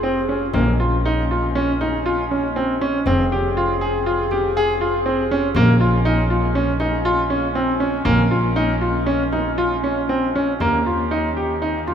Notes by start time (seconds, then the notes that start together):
Already playing: F1 F3 C4 G#4
0.03 C4
0.29 C#4
0.53 A#1 G#3 A#3 C#4, frame drum
0.80 F4
1.05 D#4
1.31 F4
1.55 C#4
1.81 D#4, frame drum
2.06 F4
2.31 C#4, frame drum
2.56 C4
2.81 C#4, frame drum
3.06 F1 F3 C4 G#4 G5, frame drum
3.32 G4
3.57 F4
3.81 G#4
4.06 F4
4.31 G4, frame drum
4.57 G#4
4.80 F4, frame drum
5.06 C4
5.30 C#4, frame drum
5.55 A#1 G#3 A#3 C#4, frame drum
5.80 F4
6.05 D#4
6.30 F4
6.55 C#4
6.80 D#4, frame drum
7.05 F4
7.30 C#4, frame drum
7.55 C4
7.80 C#4, frame drum
8.05 A#1 A#3, frame drum
8.31 F4
8.56 D#4, frame drum
8.81 F4, frame drum
9.06 C#4, frame drum
9.32 D#4, frame drum
9.58 F4, frame drum
9.84 C#4, frame drum
10.09 C4
10.35 C#4, frame drum
10.59 D#2 D#3 A#3 C#4 G4 A#5, frame drum
10.86 F4
11.11 D#4
11.37 G4
11.62 D#4, frame drum
11.87 F4, frame drum